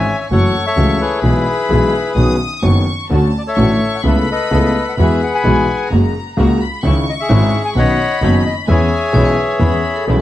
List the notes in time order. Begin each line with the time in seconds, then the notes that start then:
Already playing: C#5 E5 G#5
0.21 E5
0.30 F#1 F#2 E3 F#3 A3 C#4 F#4 A4 C#5 F#5 C#6
0.66 A4 C#5 E5
0.77 C#2 C#3 E3 A3 C#4 F#4
1.01 E4 G#4 B4
1.23 B1 B2 E3 G#3 B3 G#4 B5
1.70 B1 B2 E3 G#3 B3 G#4
2.16 B1 B2 D#3 B3 C#4 F#4 D#6
2.62 F#1 F#2 D#3 B3 C#4 F#4 C#6
3.10 D2 D3 A3 C#4 D4 F#4 A5
3.38 D5
3.47 A4 C#5 E5
3.56 A1 A2 D3 A3 C#4 D4 F#4 C#6
3.95 F#5
4.03 C#2 C#3 A3 B3 C#4 E4 A4 B4 B5
4.08 E5
4.31 A4 B4 D#5
4.51 C#2 C#3 A3 B3 C#4 E4 A4
4.89 F#5
4.97 E2 E3 G#3 B3 E4 F#4 B5
5.01 G#4 B4 E5
5.23 F#5
5.34 F#5 G#5 B5
5.44 B1 B2 E3 G#3 B3 E4 F#4 G#5
5.90 F#1 F#2 C#3 F#3 G#3 A#3 F#4 A#5
6.36 C#2 C#3 G#3 A#3 F#4 A#5
6.62 B5
6.83 C#2 C#3 D#3 G#3 C#4 D#4 E4 C#6
7.09 D#5
7.20 G#4 E5
7.29 G#1 G#2 D#3 G#3 C#4 D#4 E4
7.65 G#5
7.75 B1 B2 D#3 B3 C#4 D#4 F#4 D#5 F#5 B5
7.79 C#5
8.21 F#1 F#2 D#3 B3 C#4 D#4 F#4 C#5
8.46 D#5
8.68 E2 E3 G#3 B3 C#4 E4 G#4 C#5 E5 G#5
9.13 B1 B2 E3 G#3 B3 C#4 E4 G#4 C#5
9.25 B4
9.59 E2 E3 G#3 B3 C#4 E4 G#4 B5
9.72 G#4
9.96 A4
10.07 B1 B2 E3 G#3 B3 C#4 E4 G#4